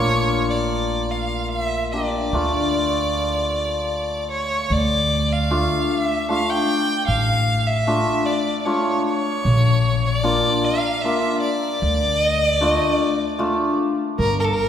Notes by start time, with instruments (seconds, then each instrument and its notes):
Already playing: upright bass A#1, hammered dulcimer A#3 D4 F4, violin C#5
0.51 violin D5
1.11 violin F5
1.50 violin E5
1.92 hammered dulcimer A#3 D4 G4, violin D5
2.32 upright bass D2, hammered dulcimer A3 D4 F4
4.31 violin C#5
4.70 upright bass D2, violin D5
5.33 violin F5
5.50 hammered dulcimer A3 D4 F4
5.91 violin E5
6.29 hammered dulcimer A3 D4 F4, violin F5
6.49 violin G5
7.07 upright bass A1, violin F5
7.67 violin E5
7.87 hammered dulcimer A3 D4 F4
8.26 violin D5
8.60 violin D5
8.65 hammered dulcimer A3 D4 F4, violin C#5
9.06 violin C#5
9.45 upright bass A#1
10.05 violin C#5
10.16 violin D5
10.23 hammered dulcimer A#3 D4 F4
10.64 violin F5
11.02 hammered dulcimer A#3 D4 F4, violin E5
11.41 violin D5
11.82 upright bass D2
12.24 violin D#5
12.46 violin D5
12.61 hammered dulcimer A3 D4 F4
12.70 violin D#5
12.93 violin D5
13.39 hammered dulcimer A3 D4 F4
14.19 upright bass G1, violin A#4
14.40 violin A#4
14.45 violin A4
14.53 violin A#4